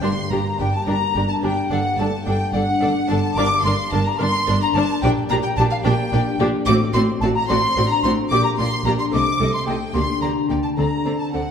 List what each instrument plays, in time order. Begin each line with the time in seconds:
0.02 double bass section G1, harp G2, cello section G2, viola section D4 G4, violin section A#4 C6, flute C6
0.31 double bass section G1, cello section G2, harp A#3, viola section D4 G4, violin section A#4 A#5, flute A#5
0.59 double bass section G1, cello section G2, viola section D4 G4, harp G4, violin section A#4 G5, flute G5
0.73 violin section A5, flute A5
0.86 double bass section G1, cello section G2, viola section D4 G4, violin section A#4 A#5, harp A#4, flute A#5
1.15 double bass section G1, cello section G2, harp D4, viola section D4 G4, violin section A#4
1.28 violin section A5, flute A5
1.41 double bass section G1, cello section G2, harp A#3, viola section D4 G4, violin section A#4 G5, flute G5
1.69 double bass section G1, harp G2, cello section G2, viola section D4 A4, violin section D5 F#5, flute F#5
1.97 double bass section G1, cello section G2, harp A3, viola section D4 A4, violin section D5 A5, flute A5
2.24 double bass section G1, cello section G2, viola section D4 A4, harp A4, violin section D5 G5, flute G5
2.53 double bass section G1, cello section G2, harp D4, viola section D4 A4, violin section D5 F#5, flute F#5
2.82 double bass section G1, cello section G2, harp A3, viola section D4 A4, violin section D5
3.09 double bass section G1, cello section G2, harp D3, viola section D4 A4, violin section D5 A5, flute A5
3.35 double bass section G1, cello section G2, harp G2, viola section D4 A#4, violin section D5 D6, flute D6
3.63 double bass section G1, cello section G2, harp A#3, viola section D4 A#4, violin section D5 C6, flute C6
3.91 double bass section G1, cello section G2, viola section D4 A#4, harp G4, violin section D5 A5, flute A5
4.04 violin section A#5, flute A#5
4.19 double bass section G1, cello section G2, viola section D4 A#4, harp A#4, violin section D5 C6, flute C6
4.46 double bass section G1, cello section G2, harp D4, viola section D4 A#4, violin section D5
4.61 violin section A#5, flute A#5
4.74 double bass section G1, cello section G2, harp A#3, viola section D4 A#4, violin section D5 A5, flute A5
5.01 double bass section A#1, harp A#2, cello section A#2, viola section D4 G4, violin section D5 G5, flute G5
5.29 double bass section A#1, cello section A#2, harp A#3, viola section D4 G4, violin section D5 A#5, flute A#5
5.42 violin section G5, flute G5
5.56 double bass section A#1, cello section A#2, viola section D4 G4, harp G4, violin section D5 A5, flute A5
5.70 violin section F5, flute F5
5.83 double bass section A#1, cello section A#2, viola section D4 G4, harp A#4, violin section D5 G5, flute G5
6.11 double bass section A#1, cello section A#2, harp D4, viola section D4 G4, violin section D5
6.38 double bass section A#1, cello section A#2, harp A#3, viola section D4 G4, violin section D5
6.66 double bass section A1, harp A2, cello section A2, viola section C4 F#4, violin section D5 D6, flute D6
6.93 double bass section A1, cello section A2, harp C4, viola section C4 F#4, violin section D5 C6, flute C6
7.20 double bass section A1, cello section A2, viola section C4 F#4, harp F#4, violin section D5 A5, flute A5
7.35 flute A#5, violin section A#5
7.48 double bass section A1, cello section A2, viola section C4 F#4, harp C5, violin section D5 C6, flute C6
7.76 double bass section A1, cello section A2, viola section C4 F#4, harp D4, violin section D5
7.88 violin section A#5, flute A#5
8.03 double bass section A1, cello section A2, harp C4, viola section C4 F#4, violin section D5 C6, flute C6
8.29 double bass section A#1, harp A#2, cello section A#2, viola section A#3 G4, violin section D5 D6, flute D6
8.44 violin section A#5, flute A#5
8.57 double bass section A#1, cello section A#2, harp A#3, viola section A#3 G4, violin section D5 C6, flute C6
8.85 double bass section A#1, cello section A#2, viola section A#3 G4, harp D4 G4, violin section D5 A#5, flute A#5
8.99 violin section C6, flute C6
9.11 double bass section C2, harp C3, cello section C3, viola section A3 A4, violin section D#5 D6, flute D6
9.39 double bass section C2, cello section C3, viola section A3 A4, harp A3, violin section D#5
9.53 flute C6, violin section C6
9.66 double bass section C2, cello section C3, viola section A3 A4, harp D#4 A4, violin section D#5 G5, flute G5
9.94 double bass section D2, harp D3, cello section D3, viola section A#3 G4, violin section D5 C6, flute C6
10.22 double bass section D2, cello section D3, viola section A#3 G4, harp D4, violin section D5 A#5, flute A#5
10.49 double bass section D2, cello section D3, viola section A#3 G4, harp D4 G4, violin section D5 G5, flute G5
10.63 violin section A5, flute A5
10.77 double bass section D2, harp D3, cello section D3, viola section C4 A4, violin section D5 A#5, flute A#5
11.05 double bass section D2, cello section D3, harp C4, viola section C4 A4, violin section D5
11.19 violin section A5, flute A5
11.32 double bass section D2, cello section D3, viola section C4 A4, harp D4 A4, violin section D5 F#5, flute F#5